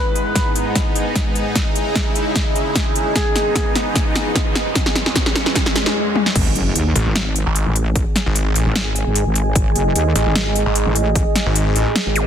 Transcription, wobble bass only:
6.36 6.54 G#1 loud
6.55 6.74 F#1 loud
6.76 6.94 D#2 loud
7.06 7.45 G#1 loud
7.66 8.04 A1 loud
8.66 9.04 G#1 loud
9.06 9.24 G#1 loud
9.26 9.54 G#1 loud
9.55 9.74 G#1 loud
9.75 9.94 F#1 loud
9.95 10.14 D#2 loud
10.26 10.64 G#1 medium
10.86 11.24 A1 loud
12.06 12.27 G#1 medium

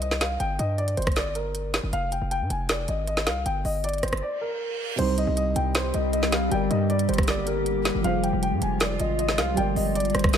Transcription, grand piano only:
0.02 0.19 D#5 medium
0.21 0.38 F5 medium
0.40 0.58 G5 loud
0.59 0.77 D#5 medium
0.78 0.96 D5 medium
0.97 1.15 C5 medium
1.16 1.34 D5 medium
1.35 1.89 A#4 medium
1.93 2.10 F5 medium
2.12 2.30 G5 medium
2.31 2.49 G5 medium
2.50 2.68 G#5 medium
2.69 2.87 D5 medium
2.89 3.06 D#5 medium
3.08 3.25 D#5 medium
3.26 3.44 F5 medium
3.46 3.63 G5 medium
3.65 3.82 D#5 medium
3.84 4.02 D5 medium
4.03 4.21 C5 medium
4.22 4.40 D5 medium
4.41 4.95 A#4 medium
4.99 5.16 C5 medium
5.18 5.35 D#5 medium
5.37 5.54 D#5 medium
5.56 5.73 G5 medium
5.75 5.93 C5 medium
5.94 6.12 D#5 medium
6.13 6.31 D#5 medium
6.32 6.50 F5 medium
6.52 6.69 G5 loud
6.70 6.88 D#5 medium
6.90 7.07 D5 medium
7.09 7.26 C5 medium
7.28 7.45 D5 medium
7.47 8.01 A#4 medium
8.04 8.22 F5 loud
8.23 8.41 G5 medium
8.43 8.60 G5 medium
8.62 8.79 G#5 medium
8.81 8.98 D5 medium
9.00 9.18 D#5 medium
9.19 9.37 D#5 medium
9.38 9.56 F5 medium
9.57 9.75 G5 medium
9.76 9.94 D#5 medium
9.96 10.13 D5 medium
10.14 10.32 C5 medium
10.34 10.38 D5 medium

